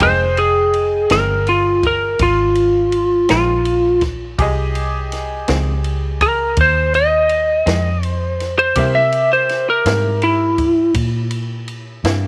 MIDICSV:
0, 0, Header, 1, 6, 480
1, 0, Start_track
1, 0, Key_signature, -4, "minor"
1, 0, Tempo, 728155
1, 15, Time_signature, 12, 3, 24, 8
1, 8091, End_track
2, 0, Start_track
2, 0, Title_t, "Lead electric guitar"
2, 0, Program_c, 0, 29
2, 18, Note_on_c, 0, 72, 99
2, 250, Note_off_c, 0, 72, 0
2, 253, Note_on_c, 0, 68, 89
2, 721, Note_off_c, 0, 68, 0
2, 738, Note_on_c, 0, 70, 85
2, 971, Note_off_c, 0, 70, 0
2, 982, Note_on_c, 0, 65, 74
2, 1213, Note_off_c, 0, 65, 0
2, 1230, Note_on_c, 0, 70, 80
2, 1457, Note_off_c, 0, 70, 0
2, 1467, Note_on_c, 0, 65, 87
2, 2162, Note_off_c, 0, 65, 0
2, 2180, Note_on_c, 0, 65, 94
2, 2646, Note_off_c, 0, 65, 0
2, 4103, Note_on_c, 0, 70, 94
2, 4334, Note_off_c, 0, 70, 0
2, 4356, Note_on_c, 0, 72, 87
2, 4579, Note_off_c, 0, 72, 0
2, 4582, Note_on_c, 0, 75, 89
2, 5320, Note_off_c, 0, 75, 0
2, 5320, Note_on_c, 0, 72, 89
2, 5633, Note_off_c, 0, 72, 0
2, 5662, Note_on_c, 0, 72, 85
2, 5893, Note_off_c, 0, 72, 0
2, 5900, Note_on_c, 0, 76, 76
2, 6131, Note_off_c, 0, 76, 0
2, 6151, Note_on_c, 0, 72, 89
2, 6377, Note_off_c, 0, 72, 0
2, 6393, Note_on_c, 0, 70, 88
2, 6734, Note_off_c, 0, 70, 0
2, 6747, Note_on_c, 0, 64, 88
2, 7207, Note_off_c, 0, 64, 0
2, 8091, End_track
3, 0, Start_track
3, 0, Title_t, "Upright piano"
3, 0, Program_c, 1, 0
3, 0, Note_on_c, 1, 79, 57
3, 12, Note_on_c, 1, 68, 52
3, 23, Note_on_c, 1, 75, 57
3, 2865, Note_off_c, 1, 79, 0
3, 2872, Note_off_c, 1, 68, 0
3, 2877, Note_off_c, 1, 75, 0
3, 2890, Note_on_c, 1, 67, 64
3, 2898, Note_on_c, 1, 68, 63
3, 2913, Note_on_c, 1, 75, 73
3, 5747, Note_off_c, 1, 67, 0
3, 5751, Note_off_c, 1, 68, 0
3, 5759, Note_off_c, 1, 75, 0
3, 5772, Note_on_c, 1, 67, 54
3, 5782, Note_on_c, 1, 70, 49
3, 5796, Note_on_c, 1, 76, 56
3, 8091, Note_off_c, 1, 67, 0
3, 8091, Note_off_c, 1, 70, 0
3, 8091, Note_off_c, 1, 76, 0
3, 8091, End_track
4, 0, Start_track
4, 0, Title_t, "Clean electric guitar"
4, 0, Program_c, 2, 27
4, 9, Note_on_c, 2, 41, 70
4, 10, Note_on_c, 2, 51, 77
4, 14, Note_on_c, 2, 56, 83
4, 21, Note_on_c, 2, 60, 78
4, 156, Note_off_c, 2, 41, 0
4, 157, Note_off_c, 2, 51, 0
4, 159, Note_off_c, 2, 56, 0
4, 162, Note_off_c, 2, 60, 0
4, 730, Note_on_c, 2, 56, 70
4, 730, Note_on_c, 2, 60, 68
4, 736, Note_on_c, 2, 51, 63
4, 740, Note_on_c, 2, 41, 62
4, 878, Note_off_c, 2, 56, 0
4, 878, Note_off_c, 2, 60, 0
4, 881, Note_off_c, 2, 51, 0
4, 883, Note_off_c, 2, 41, 0
4, 2169, Note_on_c, 2, 60, 65
4, 2177, Note_on_c, 2, 56, 63
4, 2181, Note_on_c, 2, 51, 58
4, 2182, Note_on_c, 2, 41, 57
4, 2318, Note_off_c, 2, 60, 0
4, 2322, Note_off_c, 2, 56, 0
4, 2324, Note_off_c, 2, 51, 0
4, 2325, Note_off_c, 2, 41, 0
4, 3613, Note_on_c, 2, 60, 81
4, 3620, Note_on_c, 2, 56, 73
4, 3624, Note_on_c, 2, 51, 69
4, 3631, Note_on_c, 2, 41, 67
4, 3760, Note_off_c, 2, 60, 0
4, 3764, Note_off_c, 2, 56, 0
4, 3766, Note_off_c, 2, 51, 0
4, 3769, Note_off_c, 2, 41, 0
4, 5051, Note_on_c, 2, 60, 61
4, 5054, Note_on_c, 2, 56, 60
4, 5061, Note_on_c, 2, 51, 54
4, 5064, Note_on_c, 2, 41, 54
4, 5199, Note_off_c, 2, 60, 0
4, 5200, Note_off_c, 2, 56, 0
4, 5204, Note_off_c, 2, 51, 0
4, 5206, Note_off_c, 2, 41, 0
4, 5783, Note_on_c, 2, 48, 59
4, 5783, Note_on_c, 2, 55, 73
4, 5788, Note_on_c, 2, 58, 72
4, 5797, Note_on_c, 2, 64, 73
4, 5924, Note_off_c, 2, 48, 0
4, 5924, Note_off_c, 2, 55, 0
4, 5927, Note_off_c, 2, 58, 0
4, 5931, Note_off_c, 2, 64, 0
4, 6504, Note_on_c, 2, 64, 64
4, 6507, Note_on_c, 2, 58, 68
4, 6510, Note_on_c, 2, 55, 59
4, 6514, Note_on_c, 2, 48, 58
4, 6644, Note_off_c, 2, 64, 0
4, 6646, Note_off_c, 2, 58, 0
4, 6648, Note_off_c, 2, 55, 0
4, 6649, Note_off_c, 2, 48, 0
4, 7942, Note_on_c, 2, 64, 72
4, 7945, Note_on_c, 2, 58, 73
4, 7951, Note_on_c, 2, 55, 70
4, 7953, Note_on_c, 2, 48, 59
4, 8081, Note_off_c, 2, 64, 0
4, 8083, Note_off_c, 2, 58, 0
4, 8086, Note_off_c, 2, 55, 0
4, 8087, Note_off_c, 2, 48, 0
4, 8091, End_track
5, 0, Start_track
5, 0, Title_t, "Fingered electric bass"
5, 0, Program_c, 3, 33
5, 2, Note_on_c, 3, 29, 84
5, 708, Note_off_c, 3, 29, 0
5, 731, Note_on_c, 3, 31, 89
5, 1433, Note_off_c, 3, 31, 0
5, 1445, Note_on_c, 3, 32, 84
5, 2151, Note_off_c, 3, 32, 0
5, 2179, Note_on_c, 3, 34, 89
5, 2878, Note_off_c, 3, 34, 0
5, 2892, Note_on_c, 3, 36, 76
5, 3594, Note_off_c, 3, 36, 0
5, 3619, Note_on_c, 3, 37, 85
5, 4318, Note_off_c, 3, 37, 0
5, 4334, Note_on_c, 3, 39, 82
5, 5034, Note_off_c, 3, 39, 0
5, 5053, Note_on_c, 3, 41, 89
5, 5754, Note_off_c, 3, 41, 0
5, 5774, Note_on_c, 3, 48, 84
5, 6473, Note_off_c, 3, 48, 0
5, 6498, Note_on_c, 3, 44, 91
5, 7194, Note_off_c, 3, 44, 0
5, 7214, Note_on_c, 3, 46, 88
5, 7912, Note_off_c, 3, 46, 0
5, 7937, Note_on_c, 3, 43, 82
5, 8091, Note_off_c, 3, 43, 0
5, 8091, End_track
6, 0, Start_track
6, 0, Title_t, "Drums"
6, 0, Note_on_c, 9, 51, 89
6, 3, Note_on_c, 9, 36, 105
6, 66, Note_off_c, 9, 51, 0
6, 69, Note_off_c, 9, 36, 0
6, 245, Note_on_c, 9, 51, 63
6, 311, Note_off_c, 9, 51, 0
6, 485, Note_on_c, 9, 51, 57
6, 550, Note_off_c, 9, 51, 0
6, 723, Note_on_c, 9, 51, 78
6, 730, Note_on_c, 9, 38, 103
6, 789, Note_off_c, 9, 51, 0
6, 796, Note_off_c, 9, 38, 0
6, 967, Note_on_c, 9, 51, 57
6, 1033, Note_off_c, 9, 51, 0
6, 1208, Note_on_c, 9, 36, 74
6, 1208, Note_on_c, 9, 51, 54
6, 1274, Note_off_c, 9, 36, 0
6, 1274, Note_off_c, 9, 51, 0
6, 1445, Note_on_c, 9, 51, 80
6, 1447, Note_on_c, 9, 36, 107
6, 1510, Note_off_c, 9, 51, 0
6, 1513, Note_off_c, 9, 36, 0
6, 1683, Note_on_c, 9, 51, 57
6, 1749, Note_off_c, 9, 51, 0
6, 1926, Note_on_c, 9, 51, 59
6, 1992, Note_off_c, 9, 51, 0
6, 2167, Note_on_c, 9, 51, 77
6, 2175, Note_on_c, 9, 38, 107
6, 2233, Note_off_c, 9, 51, 0
6, 2241, Note_off_c, 9, 38, 0
6, 2408, Note_on_c, 9, 51, 65
6, 2474, Note_off_c, 9, 51, 0
6, 2644, Note_on_c, 9, 51, 56
6, 2649, Note_on_c, 9, 36, 75
6, 2651, Note_on_c, 9, 38, 28
6, 2710, Note_off_c, 9, 51, 0
6, 2715, Note_off_c, 9, 36, 0
6, 2717, Note_off_c, 9, 38, 0
6, 2891, Note_on_c, 9, 51, 80
6, 2892, Note_on_c, 9, 36, 108
6, 2957, Note_off_c, 9, 51, 0
6, 2958, Note_off_c, 9, 36, 0
6, 3132, Note_on_c, 9, 51, 63
6, 3198, Note_off_c, 9, 51, 0
6, 3375, Note_on_c, 9, 51, 59
6, 3382, Note_on_c, 9, 38, 30
6, 3441, Note_off_c, 9, 51, 0
6, 3448, Note_off_c, 9, 38, 0
6, 3611, Note_on_c, 9, 51, 79
6, 3618, Note_on_c, 9, 38, 96
6, 3677, Note_off_c, 9, 51, 0
6, 3684, Note_off_c, 9, 38, 0
6, 3851, Note_on_c, 9, 51, 59
6, 3917, Note_off_c, 9, 51, 0
6, 4093, Note_on_c, 9, 51, 60
6, 4094, Note_on_c, 9, 36, 80
6, 4158, Note_off_c, 9, 51, 0
6, 4159, Note_off_c, 9, 36, 0
6, 4328, Note_on_c, 9, 51, 79
6, 4333, Note_on_c, 9, 36, 114
6, 4394, Note_off_c, 9, 51, 0
6, 4399, Note_off_c, 9, 36, 0
6, 4575, Note_on_c, 9, 51, 54
6, 4641, Note_off_c, 9, 51, 0
6, 4807, Note_on_c, 9, 51, 58
6, 4873, Note_off_c, 9, 51, 0
6, 5054, Note_on_c, 9, 51, 79
6, 5062, Note_on_c, 9, 38, 101
6, 5120, Note_off_c, 9, 51, 0
6, 5128, Note_off_c, 9, 38, 0
6, 5294, Note_on_c, 9, 51, 57
6, 5359, Note_off_c, 9, 51, 0
6, 5539, Note_on_c, 9, 51, 54
6, 5546, Note_on_c, 9, 38, 29
6, 5605, Note_off_c, 9, 51, 0
6, 5612, Note_off_c, 9, 38, 0
6, 5771, Note_on_c, 9, 51, 83
6, 5776, Note_on_c, 9, 36, 109
6, 5837, Note_off_c, 9, 51, 0
6, 5842, Note_off_c, 9, 36, 0
6, 6015, Note_on_c, 9, 51, 62
6, 6081, Note_off_c, 9, 51, 0
6, 6258, Note_on_c, 9, 51, 60
6, 6265, Note_on_c, 9, 38, 32
6, 6324, Note_off_c, 9, 51, 0
6, 6331, Note_off_c, 9, 38, 0
6, 6498, Note_on_c, 9, 51, 80
6, 6505, Note_on_c, 9, 38, 104
6, 6564, Note_off_c, 9, 51, 0
6, 6571, Note_off_c, 9, 38, 0
6, 6735, Note_on_c, 9, 51, 63
6, 6801, Note_off_c, 9, 51, 0
6, 6975, Note_on_c, 9, 51, 60
6, 6976, Note_on_c, 9, 36, 76
6, 7041, Note_off_c, 9, 51, 0
6, 7042, Note_off_c, 9, 36, 0
6, 7214, Note_on_c, 9, 51, 86
6, 7217, Note_on_c, 9, 36, 103
6, 7280, Note_off_c, 9, 51, 0
6, 7283, Note_off_c, 9, 36, 0
6, 7453, Note_on_c, 9, 51, 64
6, 7519, Note_off_c, 9, 51, 0
6, 7697, Note_on_c, 9, 51, 55
6, 7763, Note_off_c, 9, 51, 0
6, 7940, Note_on_c, 9, 51, 79
6, 7948, Note_on_c, 9, 38, 106
6, 8006, Note_off_c, 9, 51, 0
6, 8014, Note_off_c, 9, 38, 0
6, 8091, End_track
0, 0, End_of_file